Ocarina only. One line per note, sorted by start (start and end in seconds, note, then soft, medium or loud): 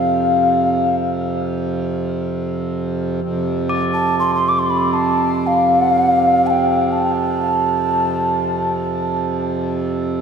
0.00 0.96 F5 medium
3.93 4.18 A5 medium
4.19 4.34 C6 medium
4.35 4.50 C6 medium
4.49 4.60 D6 medium
4.59 4.72 C6 medium
4.70 4.95 B5 medium
4.94 5.48 A5 medium
5.47 6.48 F5 medium
6.47 6.94 G5 medium
6.47 6.52 A5 soft
6.92 9.42 A5 medium